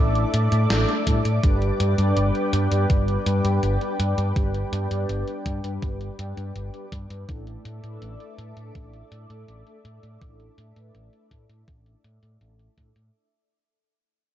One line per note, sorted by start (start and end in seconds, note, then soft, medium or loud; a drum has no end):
0.00 0.23 A1 loud
0.00 0.29 A3 medium
0.00 0.29 D4 medium
0.00 0.29 E4 medium
0.00 0.29 A4 medium
0.00 1.40 A4 medium
0.00 7.25 D5 medium
0.00 1.39 E5 medium
0.00 7.25 D6 medium
0.15 closed hi-hat soft
0.34 0.47 A2 medium
0.34 closed hi-hat medium
0.52 0.65 A2 loud
0.52 closed hi-hat medium
0.70 0.83 A1 medium
0.70 1.02 A3 medium
0.70 1.02 D4 medium
0.70 1.02 E4 medium
0.70 1.02 A4 loud
0.70 snare loud
0.70 closed hi-hat soft
0.89 closed hi-hat soft
1.07 1.20 A2 loud
1.07 1.18 G3 medium
1.07 1.18 D4 medium
1.07 1.18 E4 medium
1.07 1.18 A4 medium
1.07 kick medium
1.07 closed hi-hat medium
1.25 1.38 A2 medium
1.25 closed hi-hat medium
1.43 1.70 G1 loud
1.43 1.94 G3 medium
1.43 1.94 D4 medium
1.43 1.94 G4 medium
1.43 7.25 B4 medium
1.43 1.94 B4 loud
1.43 7.25 G5 medium
1.43 kick loud
1.43 closed hi-hat soft
1.62 closed hi-hat soft
1.80 1.93 G2 loud
1.80 closed hi-hat medium
1.98 2.11 G2 medium
1.98 2.67 G3 loud
1.98 2.67 D4 medium
1.98 2.67 G4 medium
1.98 2.67 D5 loud
1.98 closed hi-hat soft
2.17 2.30 G1 medium
2.17 closed hi-hat medium
2.35 closed hi-hat soft
2.53 2.66 G2 medium
2.53 closed hi-hat medium
2.72 2.85 G2 medium
2.72 3.22 G3 medium
2.72 3.22 D4 medium
2.72 3.22 G4 medium
2.72 3.22 B4 medium
2.72 closed hi-hat soft
2.90 3.16 G1 medium
2.90 kick loud
2.90 closed hi-hat soft
3.08 closed hi-hat soft
3.26 3.39 G2 medium
3.26 3.77 G3 medium
3.26 3.77 D4 medium
3.26 3.77 G4 medium
3.26 3.77 B4 medium
3.26 closed hi-hat medium
3.45 3.58 G2 medium
3.45 closed hi-hat soft
3.63 3.76 G1 medium
3.63 closed hi-hat soft
3.81 3.93 G3 medium
3.81 3.93 D4 medium
3.81 3.93 G4 medium
3.81 3.93 B4 loud
3.81 closed hi-hat soft
4.00 4.13 G2 medium
4.00 closed hi-hat medium
4.18 4.31 G2 medium
4.18 closed hi-hat soft
4.36 4.62 G1 loud
4.36 4.87 G3 medium
4.36 4.87 D4 medium
4.36 4.87 G4 medium
4.36 4.87 B4 loud
4.36 kick loud
4.36 closed hi-hat soft
4.54 closed hi-hat soft
4.73 4.86 G2 loud
4.73 closed hi-hat medium
4.91 5.04 G2 medium
4.91 5.60 G3 loud
4.91 5.60 D4 medium
4.91 5.60 G4 medium
4.91 5.60 D5 loud
4.91 closed hi-hat soft
5.09 5.22 G1 medium
5.09 closed hi-hat soft
5.28 closed hi-hat soft
5.46 5.59 G2 medium
5.46 kick medium
5.46 closed hi-hat medium
5.64 5.77 G2 medium
5.64 6.15 G3 medium
5.64 6.15 D4 medium
5.64 6.15 G4 medium
5.64 6.15 B4 medium
5.64 closed hi-hat soft
5.82 6.09 G1 medium
5.82 kick loud
5.82 closed hi-hat soft
6.01 closed hi-hat soft
6.19 6.32 G2 medium
6.19 6.69 G3 medium
6.19 6.69 D4 medium
6.19 6.69 G4 medium
6.19 6.69 B4 medium
6.19 closed hi-hat medium
6.37 6.50 G2 medium
6.37 closed hi-hat soft
6.56 6.69 G1 medium
6.56 closed hi-hat soft
6.74 6.85 G3 medium
6.74 6.85 D4 medium
6.74 6.85 G4 medium
6.74 6.85 B4 loud
6.74 closed hi-hat soft
6.92 7.05 G2 medium
6.92 kick medium
6.92 closed hi-hat medium
7.10 7.23 G2 medium
7.10 closed hi-hat soft
7.29 7.55 A1 medium
7.29 7.79 A3 medium
7.29 7.79 D4 medium
7.29 7.79 E4 medium
7.29 7.79 A4 loud
7.29 13.10 A4 medium
7.29 13.10 D5 medium
7.29 13.10 E5 medium
7.29 13.10 D6 medium
7.29 kick loud
7.29 closed hi-hat soft
7.47 closed hi-hat soft
7.65 7.78 A2 loud
7.65 closed hi-hat medium
7.84 7.97 A2 medium
7.84 8.52 A3 loud
7.84 8.52 D4 medium
7.84 8.52 E4 medium
7.84 8.52 B4 loud
7.84 closed hi-hat soft
8.02 8.15 A1 medium
8.02 closed hi-hat medium
8.20 closed hi-hat soft
8.38 8.52 A2 medium
8.38 closed hi-hat medium
8.57 8.70 A2 medium
8.57 9.07 A3 medium
8.57 9.07 D4 medium
8.57 9.07 E4 medium
8.57 9.07 A4 medium
8.57 closed hi-hat medium
8.75 9.01 A1 medium
8.75 kick loud
8.75 closed hi-hat soft
8.93 closed hi-hat soft
9.12 9.25 A2 medium
9.12 9.62 A3 medium
9.12 9.62 D4 medium
9.12 9.62 E4 medium
9.12 9.62 A4 medium
9.12 closed hi-hat medium
9.30 9.43 A2 medium
9.30 closed hi-hat soft
9.48 9.61 A1 medium
9.48 closed hi-hat soft
9.67 9.78 A3 medium
9.67 9.78 D4 medium
9.67 9.78 E4 medium
9.67 9.78 A4 loud
9.67 closed hi-hat soft
9.85 9.98 A2 medium
9.85 closed hi-hat medium
10.03 10.16 A2 medium
10.03 closed hi-hat medium
10.21 10.48 A1 loud
10.21 10.72 A3 medium
10.21 10.72 D4 medium
10.21 10.72 E4 medium
10.21 10.72 A4 medium
10.21 kick loud
10.21 closed hi-hat medium
10.40 closed hi-hat soft
10.58 10.71 A2 loud
10.58 closed hi-hat medium
10.76 10.89 A2 medium
10.76 11.45 A3 medium
10.76 11.45 D4 medium
10.76 11.45 E4 medium
10.76 11.45 B4 loud
10.76 closed hi-hat medium
10.95 11.08 A1 medium
10.95 closed hi-hat medium
11.13 closed hi-hat soft
11.31 11.44 A2 medium
11.31 kick medium
11.31 closed hi-hat medium
11.49 11.63 A2 medium
11.49 12.00 A3 medium
11.49 12.00 D4 medium
11.49 12.00 E4 medium
11.49 12.00 A4 medium
11.49 closed hi-hat medium
11.68 11.94 A1 loud
11.68 kick loud
11.68 closed hi-hat medium
11.86 closed hi-hat soft
12.04 12.17 A2 medium
12.04 closed hi-hat medium
12.23 12.36 A2 medium
12.23 closed hi-hat medium
12.41 12.67 A1 medium
12.41 12.73 A3 medium
12.41 12.73 D4 medium
12.41 12.73 E4 medium
12.41 12.73 A4 loud
12.41 closed hi-hat soft
12.59 closed hi-hat soft
12.78 12.91 A2 loud
12.78 12.89 A3 medium
12.78 12.89 D4 medium
12.78 12.89 E4 medium
12.78 12.89 A4 loud
12.78 kick medium
12.78 closed hi-hat medium
12.96 13.09 A2 medium
12.96 closed hi-hat soft